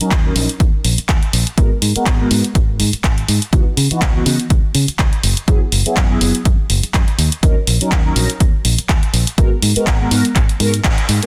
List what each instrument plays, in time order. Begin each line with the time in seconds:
0.00 analog polysynth F#3 C#4 D#4 A#4, closed hi-hat
0.11 fingered electric bass D#2, kick, clap, closed hi-hat
0.25 analog polysynth F#3 C#4 D#4 A#4
0.35 fingered electric bass A#1, analog polysynth F#3 C#4 D#4 A#4, open hi-hat
0.49 closed hi-hat
0.60 fingered electric bass D#2, kick, closed hi-hat
0.84 fingered electric bass A#1, open hi-hat
0.98 muted fingered electric bass stroke, closed hi-hat
1.09 fingered electric bass D#2, kick, clap, closed hi-hat
1.23 closed hi-hat
1.33 fingered electric bass A#1, open hi-hat
1.47 closed hi-hat
1.57 fingered electric bass G#1, analog polysynth G#3 B3 F#4 A#4, kick, closed hi-hat
1.82 fingered electric bass G#2, open hi-hat
1.95 analog polysynth G#3 B3 F#4 A#4, muted fingered electric bass stroke, closed hi-hat
2.06 fingered electric bass G#1, kick, clap, closed hi-hat
2.20 analog polysynth G#3 B3 F#4 A#4
2.30 fingered electric bass G#2, analog polysynth G#3 B3 F#4 A#4, open hi-hat
2.44 closed hi-hat
2.55 fingered electric bass G#1, kick, closed hi-hat
2.79 fingered electric bass G#2, open hi-hat
2.93 muted fingered electric bass stroke, closed hi-hat
3.04 fingered electric bass G#1, kick, clap, closed hi-hat
3.18 closed hi-hat
3.28 fingered electric bass G#2, open hi-hat
3.42 closed hi-hat
3.52 fingered electric bass C#2, analog polysynth E3 B3 D#4 F#4, kick, closed hi-hat
3.77 fingered electric bass C#3, open hi-hat
3.90 analog polysynth E3 B3 D#4 F#4, muted fingered electric bass stroke, closed hi-hat
4.01 fingered electric bass C#2, kick, clap, closed hi-hat
4.15 analog polysynth E3 B3 D#4 F#4
4.26 fingered electric bass C#3, analog polysynth E3 B3 D#4 F#4, open hi-hat
4.40 closed hi-hat
4.50 fingered electric bass C#2, kick, closed hi-hat
4.75 fingered electric bass C#3, open hi-hat
4.88 muted fingered electric bass stroke, closed hi-hat
4.99 fingered electric bass C#2, kick, clap, closed hi-hat
5.13 closed hi-hat
5.23 fingered electric bass F#1, open hi-hat
5.37 closed hi-hat
5.47 fingered electric bass F#2, analog polysynth F#3 B3 E4 G#4, kick, closed hi-hat
5.72 fingered electric bass F#1, open hi-hat
5.85 analog polysynth F#3 B3 E4 G#4, muted fingered electric bass stroke, closed hi-hat
5.97 fingered electric bass F#2, kick, clap, closed hi-hat
6.10 analog polysynth F#3 B3 E4 G#4
6.20 fingered electric bass F#1, analog polysynth F#3 B3 E4 G#4, open hi-hat
6.35 closed hi-hat
6.45 fingered electric bass F#2, kick, closed hi-hat
6.70 fingered electric bass F#1, open hi-hat
6.83 muted fingered electric bass stroke, closed hi-hat
6.94 fingered electric bass F#2, kick, clap, closed hi-hat
7.08 closed hi-hat
7.18 fingered electric bass D#2, open hi-hat
7.32 closed hi-hat
7.43 fingered electric bass D#2, analog polysynth F#3 C#4 D#4 A#4, kick, closed hi-hat
7.67 fingered electric bass A#1, open hi-hat
7.81 analog polysynth F#3 C#4 D#4 A#4, muted fingered electric bass stroke, closed hi-hat
7.92 fingered electric bass D#2, kick, clap, closed hi-hat
8.05 analog polysynth F#3 C#4 D#4 A#4
8.16 fingered electric bass A#1, analog polysynth F#3 C#4 D#4 A#4, open hi-hat
8.30 closed hi-hat
8.40 fingered electric bass D#2, kick, closed hi-hat
8.65 fingered electric bass A#1, open hi-hat
8.78 muted fingered electric bass stroke, closed hi-hat
8.89 fingered electric bass D#2, kick, clap, closed hi-hat
9.03 closed hi-hat
9.13 fingered electric bass A#1, open hi-hat
9.27 closed hi-hat
9.37 fingered electric bass G#1, analog polysynth G#3 B3 F#4 A#4, kick, closed hi-hat
9.62 fingered electric bass G#2, open hi-hat
9.75 analog polysynth G#3 B3 F#4 A#4, muted fingered electric bass stroke, closed hi-hat
9.87 fingered electric bass G#1, kick, clap, closed hi-hat
10.00 analog polysynth G#3 B3 F#4 A#4
10.11 fingered electric bass G#2, analog polysynth G#3 B3 F#4 A#4, open hi-hat
10.25 closed hi-hat
10.36 fingered electric bass G#1, kick, clap, closed hi-hat
10.49 closed hi-hat
10.60 fingered electric bass G#2, analog polysynth G#3 B3 F#4 A#4, open hi-hat
10.74 closed hi-hat
10.84 fingered electric bass G#1, kick, clap, closed hi-hat
10.98 closed hi-hat
11.09 fingered electric bass G#2, open hi-hat
11.22 analog polysynth G#3 B3 F#4, closed hi-hat